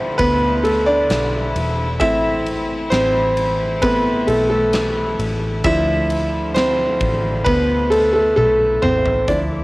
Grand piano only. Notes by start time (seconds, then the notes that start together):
Already playing: F3 C4 D4 E4 C5 E5
0.18 B3 B4
0.64 A3 A4
0.86 D4 D5
2.00 A3 C4 E4 E5
2.90 C4 C5
3.82 A3 B3 C4 B4
4.27 A3 A4
4.50 A3 A4
5.64 F3 D4 E4 E5
6.54 C4 C5
7.44 B3 B4
7.90 A3 A4
8.13 A3 A4
8.36 A3 A4
8.82 C4 C5
9.28 F3 D4 E4 D5